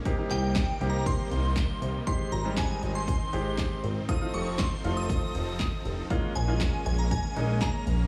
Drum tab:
HH |xxxxxxxx|xxxxxxxx|xxxxxxxx|xxxxxxxx|
CP |-xx---x-|--x---x-|--x---x-|--x---x-|
SD |--o---o-|--o---o-|--o---o-|--o---o-|
BD |o-o-o-o-|o-o-o-o-|o-o-o-o-|o-o-o-o-|